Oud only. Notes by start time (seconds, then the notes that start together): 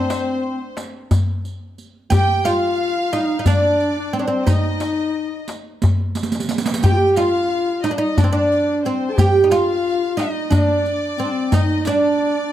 Already playing: C4
2.10 G4
2.45 F4
3.13 D#4
3.39 D#4
3.47 D4
4.13 C4
4.19 D4
4.28 C4
4.47 D#4
6.84 G4
7.17 F4
7.84 D#4
7.91 D4
7.98 D#4
8.18 D4
8.24 C4
8.33 D4
8.86 C4
9.19 G4
9.44 D#4
9.52 F4
10.17 D#4
10.50 D4
11.20 C4
11.54 D#4
11.87 D4